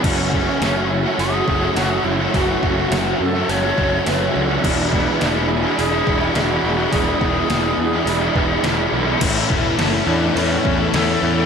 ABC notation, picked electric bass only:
X:1
M:4/4
L:1/8
Q:1/4=105
K:A
V:1 name="Picked electric bass" clef=bass
F,,,2 F,,,2 F,,, F,,, F,,, F,,, | F,,, F,,, F,,, F,, F,,, F,,, F,,, C,, | E,,,2 E,,,2 E,,, E,,, E,,, E,,, | E,,, E,,, E,,, E,, E,,, E,,, E,,, B,,, |
A,,, E,,, F,,, E,, E,, E,, E,, E,, |]